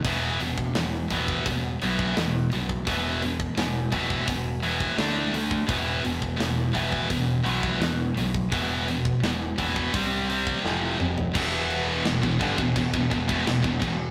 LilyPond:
<<
  \new Staff \with { instrumentName = "Distorted electric guitar" } { \clef bass \time 4/4 \key e \minor \tempo 4 = 85 <e, b, e>8 <e, b,>8 <e, b,>8 <e, b, e>8 <e, b,>8 <e, b, e>8 <e, b,>8 <e, b,>8 | <e, b, e>8 <e, b,>8 <e, b,>8 <e, b, e>8 <e, b,>8 <e, b, e>8 <d a d'>8 <d a>8 | <e, b, e>8 <e, b,>8 <e, b,>8 <e, b, e>8 <e, b,>8 <e, b, e>8 <e, b,>8 <e, b,>8 | <e, b, e>8 <e, b,>8 <e, b,>8 <e, b, e>8 <c g c'>8 <c g c'>8 <f, c f>8 <f, c>8 |
<e, b, e>4 <e, b,>16 <e, b,>16 <g, d>16 <e, b,>16 <e, b,>16 <e, b,>16 <e, b,>16 <e, b,>16 <e, b,>16 <e, b,>16 <e, b,>8 | }
  \new Staff \with { instrumentName = "Distorted electric guitar" } { \clef bass \time 4/4 \key e \minor <e, b, e>8 <e, b,>8 <e, b,>8 <e, b, e>8 <e, b,>8 <e, b, e>8 <e, b,>8 <e, b,>8 | <e, b, e>8 <e, b,>8 <e, b,>8 <e, b, e>8 <e, b,>8 <e, b, e>8 <d a d'>8 <d a>8 | <e, b, e>8 <e, b,>8 <e, b,>8 <e, b, e>8 <e, b,>8 <e, b, e>8 <e, b,>8 <e, b,>8 | <e, b, e>8 <e, b,>8 <e, b,>8 <e, b, e>8 <c g c'>8 <c g c'>8 <f, c f>8 <f, c>8 |
<e, b, e>4 <e, b,>16 <e, b,>16 <g, d>16 <e, b,>16 <e, b,>16 <e, b,>16 <e, b,>16 <e, b,>16 <e, b,>16 <e, b,>16 <e, b,>8 | }
  \new Staff \with { instrumentName = "Distorted electric guitar" } { \clef bass \time 4/4 \key e \minor r1 | r1 | r1 | r1 |
<e, b, e>4 <e, b,>16 <e, b,>16 <g, d>16 <e, b,>16 <e, b,>16 <e, b,>16 <e, b,>16 <e, b,>16 <e, b,>16 <e, b,>16 <e, b,>8 | }
  \new Staff \with { instrumentName = "Picked electric bass" } { \clef bass \time 4/4 \key e \minor e,,8 e,,8 e,,8 e,,8 e,,8 b,,8 e,8 b,,8 | e,,4 e,,8 e,,8 e,,4 d,8 d,8 | e,,8 e,,8 e,,8 e,,8 e,,8 b,,8 e,8 b,,8 | e,,4 e,,8 e,,8 c,4 f,,8 f,,8 |
e,,4 e,,16 e,,16 g,,16 e,,16 e,,16 e,,16 e,,16 e,,16 e,,16 e,,16 e,,8 | }
  \new DrumStaff \with { instrumentName = "Drums" } \drummode { \time 4/4 <cymc hho bd>8 hho16 bd16 <hho sn>8 <hho bd>16 bd16 <hho bd>8 hho16 bd16 <hho sn>8 hho16 bd16 | <hho bd>8 hho16 bd16 <hho sn>8 <hho bd>16 bd16 <hho bd>8 hho16 bd16 <hho sn>8 hho16 bd16 | <hho bd>8 hho16 bd16 <hho sn>8 <hho bd>16 bd16 <hho bd>8 hho16 bd16 <hho sn>8 hho16 bd16 | <hho bd>8 hho16 bd16 <hho sn>8 <hho bd>16 bd16 <hho bd>8 hho16 bd16 sn8 toml16 tomfh16 |
<cymc bd>8 cymc8 <cymc sn>16 bd16 <cymc bd>16 bd16 <cymc bd>16 bd16 <cymc bd>16 bd16 <cymc sn>16 bd16 <cymc bd>8 | }
>>